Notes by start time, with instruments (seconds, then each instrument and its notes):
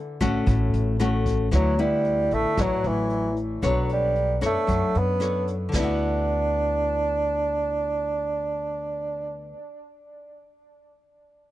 Already playing: nylon-string guitar D3
0.21 upright bass A1, nylon-string guitar A3 C#4 F#4, kick, cross-stick, closed hi-hat
0.46 upright bass A1, nylon-string guitar A2, kick, closed hi-hat
0.73 upright bass A1, closed hi-hat
1.00 nylon-string guitar A3 C#4 F#4, cross-stick, closed hi-hat
1.26 kick, closed hi-hat
1.51 upright bass D2, nylon-string guitar D3 F#3 B3 E4, bassoon F#3, kick, cross-stick, closed hi-hat
1.78 bassoon G3, nylon-string guitar B3 E4, closed hi-hat
2.05 closed hi-hat
2.31 upright bass A1, bassoon A3, closed hi-hat
2.57 upright bass A1, nylon-string guitar A2 F#3 B3 E4, bassoon F#3, kick, cross-stick, closed hi-hat
2.84 upright bass A1, bassoon E3, closed hi-hat
3.10 closed hi-hat
3.37 closed hi-hat
3.62 upright bass B1, bassoon F#3, nylon-string guitar B3 D4 A4 C#5, kick, cross-stick, closed hi-hat
3.89 bassoon G3, closed hi-hat
4.16 closed hi-hat
4.41 upright bass F#2, nylon-string guitar D4 A4 C#5, cross-stick, closed hi-hat
4.46 bassoon A3
4.67 upright bass F#2, nylon-string guitar F#3, kick, closed hi-hat
4.95 upright bass F#2, bassoon B3, closed hi-hat
5.20 nylon-string guitar D4 A4 C#5, cross-stick, closed hi-hat
5.47 closed hi-hat
5.69 nylon-string guitar D3
5.73 upright bass D2, nylon-string guitar B3, bassoon D4, kick, snare, crash
5.79 nylon-string guitar E4
5.84 nylon-string guitar F#4